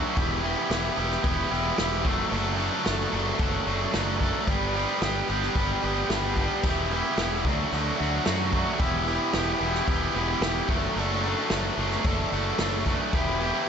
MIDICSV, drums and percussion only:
0, 0, Header, 1, 2, 480
1, 0, Start_track
1, 0, Tempo, 540054
1, 152, Time_signature, 4, 2, 24, 8
1, 12165, End_track
2, 0, Start_track
2, 0, Title_t, "Drums"
2, 149, Note_on_c, 9, 46, 86
2, 150, Note_on_c, 9, 36, 113
2, 238, Note_off_c, 9, 46, 0
2, 239, Note_off_c, 9, 36, 0
2, 391, Note_on_c, 9, 46, 57
2, 480, Note_off_c, 9, 46, 0
2, 628, Note_on_c, 9, 46, 83
2, 632, Note_on_c, 9, 38, 117
2, 717, Note_off_c, 9, 46, 0
2, 721, Note_off_c, 9, 38, 0
2, 864, Note_on_c, 9, 46, 59
2, 953, Note_off_c, 9, 46, 0
2, 991, Note_on_c, 9, 38, 33
2, 1080, Note_off_c, 9, 38, 0
2, 1103, Note_on_c, 9, 36, 115
2, 1104, Note_on_c, 9, 46, 71
2, 1192, Note_off_c, 9, 36, 0
2, 1193, Note_off_c, 9, 46, 0
2, 1345, Note_on_c, 9, 46, 61
2, 1434, Note_off_c, 9, 46, 0
2, 1580, Note_on_c, 9, 46, 87
2, 1584, Note_on_c, 9, 38, 115
2, 1669, Note_off_c, 9, 46, 0
2, 1673, Note_off_c, 9, 38, 0
2, 1820, Note_on_c, 9, 36, 104
2, 1821, Note_on_c, 9, 46, 61
2, 1909, Note_off_c, 9, 36, 0
2, 1909, Note_off_c, 9, 46, 0
2, 2062, Note_on_c, 9, 46, 81
2, 2151, Note_off_c, 9, 46, 0
2, 2301, Note_on_c, 9, 46, 62
2, 2390, Note_off_c, 9, 46, 0
2, 2537, Note_on_c, 9, 46, 90
2, 2541, Note_on_c, 9, 38, 113
2, 2626, Note_off_c, 9, 46, 0
2, 2630, Note_off_c, 9, 38, 0
2, 2776, Note_on_c, 9, 46, 65
2, 2865, Note_off_c, 9, 46, 0
2, 3013, Note_on_c, 9, 46, 87
2, 3018, Note_on_c, 9, 36, 119
2, 3102, Note_off_c, 9, 46, 0
2, 3106, Note_off_c, 9, 36, 0
2, 3259, Note_on_c, 9, 46, 64
2, 3348, Note_off_c, 9, 46, 0
2, 3496, Note_on_c, 9, 46, 93
2, 3500, Note_on_c, 9, 38, 121
2, 3584, Note_off_c, 9, 46, 0
2, 3589, Note_off_c, 9, 38, 0
2, 3740, Note_on_c, 9, 36, 82
2, 3742, Note_on_c, 9, 46, 67
2, 3829, Note_off_c, 9, 36, 0
2, 3830, Note_off_c, 9, 46, 0
2, 3978, Note_on_c, 9, 36, 107
2, 3979, Note_on_c, 9, 46, 91
2, 4067, Note_off_c, 9, 36, 0
2, 4068, Note_off_c, 9, 46, 0
2, 4220, Note_on_c, 9, 46, 64
2, 4309, Note_off_c, 9, 46, 0
2, 4457, Note_on_c, 9, 46, 84
2, 4461, Note_on_c, 9, 38, 122
2, 4546, Note_off_c, 9, 46, 0
2, 4550, Note_off_c, 9, 38, 0
2, 4702, Note_on_c, 9, 46, 60
2, 4791, Note_off_c, 9, 46, 0
2, 4825, Note_on_c, 9, 38, 30
2, 4914, Note_off_c, 9, 38, 0
2, 4937, Note_on_c, 9, 46, 79
2, 4938, Note_on_c, 9, 36, 107
2, 5026, Note_off_c, 9, 46, 0
2, 5027, Note_off_c, 9, 36, 0
2, 5176, Note_on_c, 9, 46, 59
2, 5265, Note_off_c, 9, 46, 0
2, 5419, Note_on_c, 9, 46, 83
2, 5423, Note_on_c, 9, 38, 114
2, 5508, Note_off_c, 9, 46, 0
2, 5512, Note_off_c, 9, 38, 0
2, 5658, Note_on_c, 9, 36, 75
2, 5662, Note_on_c, 9, 46, 60
2, 5747, Note_off_c, 9, 36, 0
2, 5751, Note_off_c, 9, 46, 0
2, 5896, Note_on_c, 9, 49, 95
2, 5898, Note_on_c, 9, 36, 109
2, 5985, Note_off_c, 9, 49, 0
2, 5987, Note_off_c, 9, 36, 0
2, 6138, Note_on_c, 9, 46, 63
2, 6227, Note_off_c, 9, 46, 0
2, 6376, Note_on_c, 9, 46, 81
2, 6380, Note_on_c, 9, 38, 116
2, 6465, Note_off_c, 9, 46, 0
2, 6469, Note_off_c, 9, 38, 0
2, 6620, Note_on_c, 9, 36, 99
2, 6625, Note_on_c, 9, 46, 62
2, 6709, Note_off_c, 9, 36, 0
2, 6714, Note_off_c, 9, 46, 0
2, 6860, Note_on_c, 9, 46, 81
2, 6949, Note_off_c, 9, 46, 0
2, 7100, Note_on_c, 9, 46, 65
2, 7189, Note_off_c, 9, 46, 0
2, 7336, Note_on_c, 9, 46, 87
2, 7340, Note_on_c, 9, 38, 117
2, 7425, Note_off_c, 9, 46, 0
2, 7429, Note_off_c, 9, 38, 0
2, 7575, Note_on_c, 9, 46, 65
2, 7578, Note_on_c, 9, 36, 83
2, 7664, Note_off_c, 9, 46, 0
2, 7667, Note_off_c, 9, 36, 0
2, 7815, Note_on_c, 9, 46, 88
2, 7818, Note_on_c, 9, 36, 115
2, 7904, Note_off_c, 9, 46, 0
2, 7907, Note_off_c, 9, 36, 0
2, 8059, Note_on_c, 9, 46, 63
2, 8148, Note_off_c, 9, 46, 0
2, 8292, Note_on_c, 9, 46, 90
2, 8297, Note_on_c, 9, 38, 107
2, 8381, Note_off_c, 9, 46, 0
2, 8386, Note_off_c, 9, 38, 0
2, 8539, Note_on_c, 9, 46, 58
2, 8628, Note_off_c, 9, 46, 0
2, 8666, Note_on_c, 9, 38, 33
2, 8755, Note_off_c, 9, 38, 0
2, 8777, Note_on_c, 9, 46, 77
2, 8779, Note_on_c, 9, 36, 112
2, 8866, Note_off_c, 9, 46, 0
2, 8867, Note_off_c, 9, 36, 0
2, 9019, Note_on_c, 9, 46, 58
2, 9108, Note_off_c, 9, 46, 0
2, 9258, Note_on_c, 9, 46, 85
2, 9263, Note_on_c, 9, 38, 124
2, 9347, Note_off_c, 9, 46, 0
2, 9352, Note_off_c, 9, 38, 0
2, 9497, Note_on_c, 9, 46, 61
2, 9499, Note_on_c, 9, 36, 110
2, 9586, Note_off_c, 9, 46, 0
2, 9588, Note_off_c, 9, 36, 0
2, 9738, Note_on_c, 9, 46, 75
2, 9827, Note_off_c, 9, 46, 0
2, 9980, Note_on_c, 9, 46, 54
2, 10068, Note_off_c, 9, 46, 0
2, 10218, Note_on_c, 9, 46, 82
2, 10222, Note_on_c, 9, 38, 118
2, 10307, Note_off_c, 9, 46, 0
2, 10311, Note_off_c, 9, 38, 0
2, 10463, Note_on_c, 9, 46, 58
2, 10552, Note_off_c, 9, 46, 0
2, 10590, Note_on_c, 9, 38, 32
2, 10679, Note_off_c, 9, 38, 0
2, 10703, Note_on_c, 9, 46, 78
2, 10707, Note_on_c, 9, 36, 116
2, 10792, Note_off_c, 9, 46, 0
2, 10796, Note_off_c, 9, 36, 0
2, 10948, Note_on_c, 9, 46, 63
2, 11037, Note_off_c, 9, 46, 0
2, 11183, Note_on_c, 9, 46, 90
2, 11188, Note_on_c, 9, 38, 118
2, 11272, Note_off_c, 9, 46, 0
2, 11277, Note_off_c, 9, 38, 0
2, 11431, Note_on_c, 9, 36, 86
2, 11432, Note_on_c, 9, 46, 67
2, 11520, Note_off_c, 9, 36, 0
2, 11521, Note_off_c, 9, 46, 0
2, 11671, Note_on_c, 9, 36, 112
2, 11671, Note_on_c, 9, 46, 80
2, 11760, Note_off_c, 9, 36, 0
2, 11760, Note_off_c, 9, 46, 0
2, 11914, Note_on_c, 9, 46, 65
2, 12003, Note_off_c, 9, 46, 0
2, 12165, End_track
0, 0, End_of_file